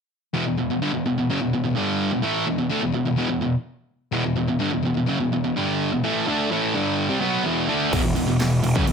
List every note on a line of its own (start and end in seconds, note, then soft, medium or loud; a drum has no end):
0.34 0.45 E2 medium
0.34 0.45 B2 loud
0.46 0.56 E2 medium
0.46 0.57 B2 medium
0.58 0.69 E2 medium
0.58 0.69 B2 medium
0.70 0.82 E2 medium
0.70 0.82 B2 medium
0.82 0.92 G2 medium
0.82 0.93 D3 medium
0.93 1.04 E2 medium
0.93 1.05 B2 medium
1.05 1.17 E2 medium
1.05 1.17 B2 medium
1.18 1.29 E2 medium
1.18 1.30 B2 medium
1.30 1.41 F#2 medium
1.30 1.41 C#3 medium
1.41 1.52 E2 medium
1.41 1.52 B2 medium
1.53 1.64 E2 medium
1.53 1.65 B2 medium
1.66 1.76 E2 medium
1.66 1.76 B2 medium
1.77 2.12 G2 medium
1.77 2.12 D3 medium
1.77 2.12 G3 medium
2.12 2.24 E2 medium
2.12 2.22 B2 medium
2.22 2.46 A2 medium
2.22 2.47 E3 medium
2.22 2.47 A3 medium
2.47 2.57 E2 medium
2.47 2.58 B2 medium
2.58 2.71 E2 medium
2.58 2.69 B2 medium
2.69 2.81 D3 medium
2.69 2.82 A3 medium
2.82 2.91 E2 medium
2.82 2.92 B2 medium
2.92 3.04 E2 medium
2.92 3.05 B2 medium
3.05 3.15 E2 medium
3.05 3.16 B2 medium
3.16 3.27 E2 medium
3.16 3.28 B2 medium
3.29 3.41 E2 medium
3.29 3.41 B2 medium
3.42 3.54 E2 medium
3.42 3.54 B2 medium
4.12 4.23 E2 medium
4.12 4.24 B2 loud
4.24 4.35 E2 medium
4.24 4.35 B2 medium
4.36 4.46 E2 medium
4.36 4.48 B2 medium
4.48 4.59 E2 medium
4.48 4.59 B2 medium
4.59 4.71 G2 medium
4.59 4.72 D3 loud
4.72 4.82 E2 medium
4.72 4.82 B2 medium
4.83 4.93 E2 medium
4.83 4.93 B2 medium
4.94 5.06 E2 medium
4.94 5.07 B2 medium
5.06 5.19 F#2 medium
5.06 5.19 C#3 loud
5.19 5.31 E2 medium
5.19 5.31 B2 medium
5.32 5.43 E2 medium
5.32 5.43 B2 medium
5.44 5.56 E2 medium
5.44 5.56 B2 medium
5.56 5.91 G2 medium
5.56 5.91 D3 medium
5.56 5.91 G3 medium
5.92 6.03 E2 medium
5.92 6.03 B2 medium
6.04 6.26 A2 medium
6.04 6.26 E3 loud
6.04 6.26 A3 medium
6.28 6.50 D3 medium
6.28 6.50 A3 medium
6.28 6.51 D4 medium
6.51 6.74 A2 loud
6.51 6.74 E3 medium
6.51 6.74 A3 medium
6.74 7.09 G2 medium
6.74 7.09 D3 medium
6.74 7.08 G3 medium
7.09 7.21 C3 medium
7.09 7.21 G3 medium
7.21 7.44 B2 medium
7.21 7.45 F#3 medium
7.21 7.45 B3 medium
7.45 7.68 E2 medium
7.45 7.69 B2 loud
7.45 7.69 E3 loud
7.69 7.91 D3 medium
7.69 7.92 A3 medium
7.69 7.92 D4 medium
7.91 8.04 E1 medium
7.91 8.02 E2 medium
7.91 8.02 B2 loud
7.91 kick loud
7.91 crash loud
7.91 crash medium
8.04 8.15 E1 medium
8.04 8.16 E2 medium
8.04 8.15 B2 medium
8.15 8.26 E1 medium
8.15 8.27 E2 medium
8.15 8.28 B2 medium
8.15 crash medium
8.28 8.39 E1 medium
8.28 8.39 E2 medium
8.28 8.40 B2 medium
8.39 8.61 E1 medium
8.39 8.59 E2 medium
8.39 8.59 B2 medium
8.39 snare loud
8.39 crash medium
8.63 8.74 E1 medium
8.63 8.75 E2 medium
8.63 8.75 B2 medium
8.63 crash medium
8.76 8.86 F#1 medium
8.76 8.86 F#2 medium
8.76 8.86 C#3 medium
8.76 kick loud
8.87 8.92 E1 medium
8.87 8.92 E2 medium
8.87 8.92 B2 medium
8.87 crash medium